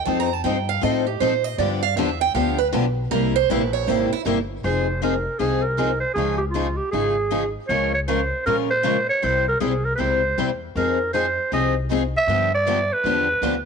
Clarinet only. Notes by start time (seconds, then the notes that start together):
4.65 C5
5.03 A#4
5.39 G#4
5.62 A#4
6.00 C5
6.14 G#4
6.38 G4
6.51 F4
6.77 G4
6.91 G#4
7.68 C#5
7.94 C#5
8.08 C5
8.46 A#4
8.71 C5
9.09 C#5
9.24 C5
9.48 A#4
9.60 G#4
9.85 A#4
9.96 B4
10.00 C5
10.77 A#4
11.14 C5
11.54 D#5
12.17 E5
12.55 D5
12.93 B4